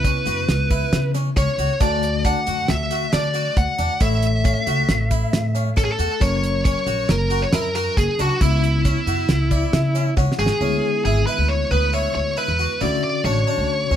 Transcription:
Already playing: C#2 C#3 B3 E4 B4
0.04 C#4, kick, closed hi-hat
0.26 F#2 F#4, closed hi-hat
0.49 C#2, snare, closed hi-hat
0.71 E4, kick, closed hi-hat
0.92 C#3, snare, closed hi-hat
1.14 C#4, snare, closed hi-hat
1.36 C#2 C#4 C#5, kick, closed hi-hat
1.58 C#2 F#4, closed hi-hat
1.80 D2 D3 A3 D4 F#4 D5, kick, closed hi-hat
2.03 closed hi-hat
2.25 D4 F#5, kick, snare, closed hi-hat
2.46 F#2 F#4, closed hi-hat
2.68 D2 E5, snare, closed hi-hat
2.91 F#4, closed hi-hat
3.12 D3 D4 D5, snare, closed hi-hat
3.34 F#4, closed hi-hat
3.57 D2 F#5, kick, closed hi-hat
3.78 E2 D4, closed hi-hat
4.00 A1 A3 E4 A4 C#5 E5, kick, closed hi-hat
4.22 closed hi-hat
4.44 C#4, kick, closed hi-hat
4.67 C#2 F#4, closed hi-hat
4.89 A1, snare, closed hi-hat
5.11 E4, kick, closed hi-hat
5.33 A2, snare, closed hi-hat
5.55 C#4, closed hi-hat
5.76 A1 C#4 A4, kick, closed hi-hat
5.85 G#4
5.92 A4
5.99 E2 F#4, closed hi-hat
6.20 F#1 F#3 C#4 A#4 C#5, kick, closed hi-hat
6.44 closed hi-hat
6.65 C#4 C#5, kick, closed hi-hat
6.87 A#1 F#4, closed hi-hat
7.09 F#1 A#4, snare, closed hi-hat
7.30 F#4, closed hi-hat
7.42 C#5
7.53 F#2 E4 A#4, snare, closed hi-hat
7.75 F#4 A#4, snare, closed hi-hat
7.97 F#1 G#4, kick, closed hi-hat
8.19 C#2 D4 F#4, closed hi-hat
8.41 C#2 C#3 B3 E4, kick, closed hi-hat
8.64 closed hi-hat
8.85 C#4, kick, closed hi-hat
9.06 F#2 F#4, closed hi-hat
9.29 C#2, snare, closed hi-hat
9.51 E4 D5, kick, snare, closed hi-hat
9.73 C#3 E5, snare, closed hi-hat
9.95 C#4, closed hi-hat
10.17 C#2 C#4 F#5, kick, snare
10.32 snare
10.39 G#1 F#4 G#4 G#5
10.46 snare
10.61 D2 D3 G#3 B3 C#4 E4
11.05 G#1 E4 G#4
11.27 E4 B4
11.38 D2
11.48 C#5
11.71 D2 B3 B4
11.93 E4 C#5
12.15 D2 C#5
12.37 E4 B4
12.48 E2
12.59 F#4
12.81 D2 D3 C#4 E4 F#4 D5
13.04 D5
13.24 A1 D4 C#5
13.47 D4
13.58 D2
13.91 D2 C#4

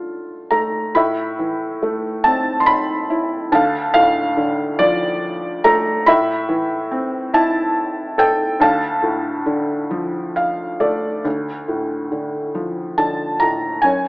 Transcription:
Already playing: D3 A3 F4 A5
0.51 A3 A#5
0.95 A2 E5 B5
1.39 E3
1.83 A3
2.24 C4 A5
2.60 C6
2.66 B5
3.10 E4
3.52 D2 F5 A5
3.94 A2 F5
4.37 D3
4.79 F3 D5
5.64 A3 A#5
6.06 A2 E5 B5
6.49 E3
6.91 C4
7.34 E4 A5
8.18 A4 G5
8.60 D2 F5 A5
9.03 A2
9.46 D3
9.91 F3
10.36 F5
10.80 A3 D5
11.25 D2
11.68 A2
12.12 D3
12.55 F3
12.98 D3 A5
13.40 A2 A#5
13.82 F#2 C#5 G#5

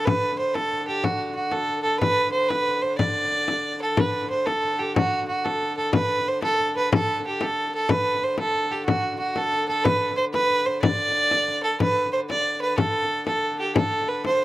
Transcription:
0.05 D3 B4, frame drum
0.39 C5, frame drum
0.54 A4, frame drum
0.73 frame drum
0.87 G4, frame drum
1.03 F#4, frame drum
1.35 F#4, frame drum
1.52 A4, frame drum
1.69 frame drum
1.83 A4, frame drum
1.99 B4, frame drum
2.32 C5, frame drum
2.49 B4, frame drum
2.68 frame drum
2.82 C5, frame drum
2.98 D5, frame drum
3.16 frame drum
3.32 frame drum
3.48 frame drum
3.82 A4
3.97 D3 B4, frame drum
4.30 C5, frame drum
4.45 A4, frame drum
4.64 frame drum
4.79 G4, frame drum
4.96 F#4, frame drum
5.28 F#4, frame drum
5.44 A4, frame drum
5.61 frame drum
5.77 A4, frame drum
5.93 B4, frame drum
6.26 C5, frame drum
6.42 A4, frame drum
6.60 frame drum
6.76 B4, frame drum
6.92 A4, frame drum
7.26 G4
7.41 A4, frame drum
7.75 A4
7.89 D3 B4, frame drum
8.22 C5, frame drum
8.38 A4, frame drum
8.54 frame drum
8.71 G4, frame drum
8.86 F#4, frame drum
9.19 F#4, frame drum
9.36 A4, frame drum
9.52 frame drum
9.68 A4, frame drum
9.84 B4, frame drum
10.17 C5, frame drum
10.33 B4, frame drum
10.50 frame drum
10.66 C5, frame drum
10.82 D5, frame drum
10.99 frame drum
11.31 frame drum
11.48 frame drum
11.63 A4
11.80 D3 B4, frame drum
11.97 frame drum
12.13 C5
12.29 D5, frame drum
12.61 B4
12.78 A4, frame drum
12.94 frame drum
13.26 A4, frame drum
13.59 G4
13.76 A4, frame drum
13.92 frame drum
14.08 B4
14.25 C5, frame drum

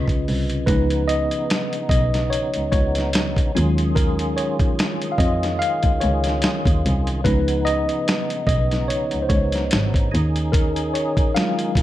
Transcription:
Already playing: C#2 C#3 C#4 F4 B4 D#5
0.08 kick, closed hi-hat
0.28 C2, open hi-hat
0.50 closed hi-hat
0.66 C#2 C#3 F3 B3 D#4 B4, kick, closed hi-hat
0.90 closed hi-hat
1.08 D#5, closed hi-hat
1.31 closed hi-hat
1.50 snare, closed hi-hat
1.73 closed hi-hat
1.89 B1 D#5, kick, closed hi-hat
2.14 snare, closed hi-hat
2.30 C#5, closed hi-hat
2.54 C#2, closed hi-hat
2.72 C#2 C#5, kick, closed hi-hat
2.95 snare, closed hi-hat
3.13 snare, closed hi-hat
3.37 kick, closed hi-hat
3.55 D#2 D#3 F#3 G#3 C#4 F4 G#4, closed hi-hat
3.78 closed hi-hat
3.95 A#4, kick, closed hi-hat
4.19 closed hi-hat
4.37 C#5, closed hi-hat
4.60 kick, closed hi-hat
4.79 snare, closed hi-hat
5.02 closed hi-hat
5.12 F5
5.18 F2 D#5, kick, closed hi-hat
5.43 snare, closed hi-hat
5.59 F5, closed hi-hat
5.83 C#2, kick, closed hi-hat
6.00 C#2 C#5, closed hi-hat
6.24 snare, closed hi-hat
6.42 snare, closed hi-hat
6.65 D#2, kick, closed hi-hat
6.86 C2, closed hi-hat
7.07 closed hi-hat
7.24 C#2 C#3 F3 B3 D#4 B4, kick, closed hi-hat
7.48 closed hi-hat
7.65 D#5, closed hi-hat
7.89 closed hi-hat
8.08 snare, closed hi-hat
8.30 closed hi-hat
8.47 B1 D#5, kick, closed hi-hat
8.71 snare, closed hi-hat
8.88 C#5, closed hi-hat
9.11 C#2, closed hi-hat
9.22 C5
9.29 C#2 C#5, kick, closed hi-hat
9.52 snare, closed hi-hat
9.71 G#1, snare, closed hi-hat
9.94 kick, closed hi-hat
10.11 D#2 D#3 C#4 D#4 G#4, closed hi-hat
10.36 closed hi-hat
10.52 A#4, kick, closed hi-hat
10.76 closed hi-hat
10.94 C#5, closed hi-hat
11.17 kick, closed hi-hat
11.35 F#3 G#3 C#4 F4 F5, snare, closed hi-hat
11.59 closed hi-hat
11.75 B1, kick, closed hi-hat

